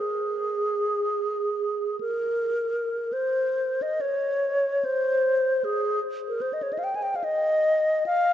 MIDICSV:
0, 0, Header, 1, 2, 480
1, 0, Start_track
1, 0, Key_signature, -4, "major"
1, 0, Tempo, 1034483
1, 475, Tempo, 975610
1, 955, Tempo, 1127820
1, 1435, Time_signature, 3, 2, 24, 8
1, 1435, Tempo, 895522
1, 1915, Tempo, 804290
1, 4488, End_track
2, 0, Start_track
2, 0, Title_t, "Alto flute"
2, 0, Program_c, 0, 73
2, 0, Note_on_c, 0, 68, 68
2, 955, Note_off_c, 0, 68, 0
2, 957, Note_on_c, 0, 70, 63
2, 1435, Note_on_c, 0, 72, 58
2, 1444, Note_off_c, 0, 70, 0
2, 1807, Note_on_c, 0, 75, 60
2, 1815, Note_off_c, 0, 72, 0
2, 1907, Note_on_c, 0, 73, 66
2, 1915, Note_off_c, 0, 75, 0
2, 2406, Note_on_c, 0, 72, 68
2, 2415, Note_off_c, 0, 73, 0
2, 2883, Note_on_c, 0, 68, 71
2, 2892, Note_off_c, 0, 72, 0
2, 3092, Note_off_c, 0, 68, 0
2, 3264, Note_on_c, 0, 70, 54
2, 3342, Note_on_c, 0, 72, 50
2, 3351, Note_off_c, 0, 70, 0
2, 3413, Note_on_c, 0, 75, 52
2, 3422, Note_off_c, 0, 72, 0
2, 3468, Note_on_c, 0, 73, 51
2, 3477, Note_off_c, 0, 75, 0
2, 3530, Note_on_c, 0, 75, 51
2, 3539, Note_off_c, 0, 73, 0
2, 3564, Note_on_c, 0, 77, 53
2, 3573, Note_off_c, 0, 75, 0
2, 3596, Note_on_c, 0, 79, 57
2, 3605, Note_off_c, 0, 77, 0
2, 3665, Note_on_c, 0, 80, 52
2, 3674, Note_off_c, 0, 79, 0
2, 3707, Note_on_c, 0, 79, 56
2, 3716, Note_off_c, 0, 80, 0
2, 3785, Note_on_c, 0, 77, 53
2, 3794, Note_off_c, 0, 79, 0
2, 3835, Note_on_c, 0, 75, 74
2, 3844, Note_off_c, 0, 77, 0
2, 4314, Note_off_c, 0, 75, 0
2, 4327, Note_on_c, 0, 77, 80
2, 4488, Note_off_c, 0, 77, 0
2, 4488, End_track
0, 0, End_of_file